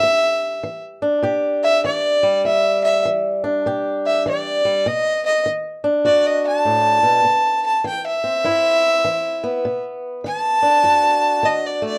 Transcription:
Already playing: G4 E5
0.03 E2
0.63 E3
1.02 D4
1.23 B2 G4
1.63 E5
1.84 E3 D5
2.23 G3
2.45 E2 E5
2.84 E5
3.05 E3
3.44 D4
3.66 B2 G4
4.06 E5
4.26 E3 D5
4.65 G3
4.86 B2 D#5
5.26 D#5
5.46 D#3
5.84 D4
6.05 F#2 F#4 D5
6.26 D#5
6.47 A5
6.65 A2
7.03 B2
7.25 C3
7.66 A5
7.84 E3 G5
8.07 E5
8.24 C4
8.44 G2 E4
9.04 E3
9.44 B3
9.65 B2
10.24 D#3 A5
10.62 D4
10.84 F#2 F#4
11.43 D#3 D#5
11.66 D5
11.82 A3 D5

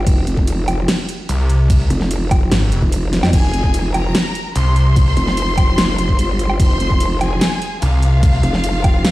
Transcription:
0.07 F1, kick, closed hi-hat, crash
0.27 F1, closed hi-hat
0.37 kick
0.47 closed hi-hat, crash
0.68 closed hi-hat, low woodblock
0.88 snare, closed hi-hat, crash
1.09 closed hi-hat
1.29 C2, closed hi-hat, crash
1.50 closed hi-hat
1.70 kick, closed hi-hat, crash
1.90 F1, closed hi-hat
2.01 snare
2.11 closed hi-hat, crash
2.31 kick, closed hi-hat, low woodblock
2.52 G#1, snare, closed hi-hat, crash
2.72 F1, closed hi-hat
2.82 F1, kick
2.92 closed hi-hat, crash
3.13 snare, closed hi-hat
3.23 F2, snare, low woodblock
3.33 F1 G#4 G#5, kick, closed hi-hat, crash
3.54 F1, closed hi-hat
3.64 kick
3.74 closed hi-hat, crash
3.94 A#4 A#5, closed hi-hat, low woodblock
4.15 snare, closed hi-hat, crash
4.35 closed hi-hat
4.56 C2 C5 C6, closed hi-hat, crash
4.76 closed hi-hat
4.96 kick, closed hi-hat, crash
5.17 F1, closed hi-hat
5.27 snare
5.37 closed hi-hat, crash
5.58 kick, closed hi-hat, low woodblock
5.78 F1, snare, closed hi-hat, crash
5.98 closed hi-hat
6.09 kick
6.19 G1, closed hi-hat, crash
6.39 closed hi-hat
6.50 low woodblock
6.60 F1 C5 C6, kick, closed hi-hat, crash
6.80 F1, closed hi-hat
6.90 kick
7.00 closed hi-hat, crash
7.21 G#4 G#5, closed hi-hat, low woodblock
7.41 snare, closed hi-hat, crash
7.62 closed hi-hat
7.82 C2 F4 F5, closed hi-hat, crash
8.02 closed hi-hat
8.23 kick, closed hi-hat, crash
8.43 F1, closed hi-hat
8.54 snare
8.64 closed hi-hat, crash
8.84 kick, closed hi-hat, low woodblock
9.05 snare, closed hi-hat, crash

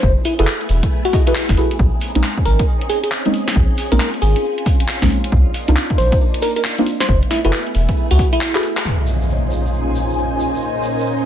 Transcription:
0.03 F#1 A3 B3 E4 G#4 C5, kick, shaker
0.25 E4, open hi-hat, shaker
0.39 F#1 E4 F#4 G#4 A4 B4, closed hi-hat, shaker
0.47 clap
0.61 closed hi-hat
0.69 E1, open hi-hat, shaker
0.82 kick, closed hi-hat, shaker
0.91 shaker
1.05 F#4, closed hi-hat
1.13 E4 F#4 G#4 A4 D#5, kick, open hi-hat, shaker
1.27 E4 F#4 G#4 A4 B4, closed hi-hat, shaker
1.35 clap, shaker
1.49 F#1, kick, snare, closed hi-hat
1.57 E4 F#4 G#4 A4 B4, open hi-hat, shaker
1.71 closed hi-hat, shaker
1.79 A#1 C4 C#4 D#4 G#4, kick, shaker
2.01 open hi-hat, shaker
2.15 A#1 G#3 A#3 C4 C#4 D#4, closed hi-hat, shaker
2.23 clap, shaker
2.37 kick, closed hi-hat
2.45 G#1 A#4, open hi-hat, shaker
2.59 kick, closed hi-hat, shaker
2.68 shaker
2.81 closed hi-hat
2.89 G#4, open hi-hat, shaker
3.03 G#4, closed hi-hat, shaker
3.12 clap, shaker
3.26 G#3 A#3 C4 C#4 D#4, closed hi-hat
3.34 open hi-hat, shaker
3.48 snare, closed hi-hat, shaker
3.56 A#1 F4, kick, shaker
3.78 open hi-hat, shaker
3.91 A#1 G#3 A#3 C4 C#4 D#4 A#4, closed hi-hat, shaker
4.00 clap, shaker
4.14 closed hi-hat
4.22 G#1 G#4, open hi-hat, shaker
4.36 closed hi-hat, shaker
4.44 shaker
4.58 closed hi-hat
4.66 kick, open hi-hat, shaker
4.80 closed hi-hat, shaker
4.88 clap, shaker
5.02 A#1 G#3 A#3 C4 C#4 D#4, kick, snare, closed hi-hat
5.10 open hi-hat, shaker
5.24 closed hi-hat, shaker
5.32 C2 A#3 D4 D#4, kick, shaker
5.54 open hi-hat, shaker
5.68 C2 A#3 C4 D4 D#4 F4, closed hi-hat, shaker
5.76 clap, shaker
5.90 kick, closed hi-hat
5.98 A#1 C5, open hi-hat, shaker
6.12 kick, closed hi-hat, shaker
6.21 shaker
6.34 closed hi-hat
6.42 A#4, open hi-hat, shaker
6.56 A#4, closed hi-hat, shaker
6.64 clap
6.78 A#3 C4 D4 D#4 F4, closed hi-hat
6.86 open hi-hat, shaker
7.00 C5, snare, closed hi-hat, shaker
7.08 F#1 A3 B3 E4 G#4 C5, kick, shaker
7.23 closed hi-hat
7.31 E4, snare, open hi-hat, shaker
7.44 F#1 E4 F#4 G#4 A4 B4, closed hi-hat, shaker
7.53 clap, shaker
7.67 closed hi-hat
7.75 E1, open hi-hat, shaker
7.89 kick, closed hi-hat, shaker
7.97 shaker
8.11 C#2 F#4, closed hi-hat
8.19 kick, open hi-hat, shaker
8.32 E4, closed hi-hat, shaker
8.41 clap, shaker
8.55 E4 F#4 G#4 A4 B4, clap, closed hi-hat
8.63 open hi-hat, shaker
8.77 clap, closed hi-hat, shaker
8.85 A#2 C#4 D#4 F4 G#4 C5, impact, shaker
8.92 A#4
9.05 G#5, shaker
9.21 shaker
9.30 shaker
9.51 shaker
9.65 D#5, shaker
9.73 C5, shaker
9.95 shaker
10.09 shaker
10.18 shaker
10.40 shaker
10.54 shaker
10.62 A#4, shaker
10.83 shaker
10.99 shaker
11.06 shaker

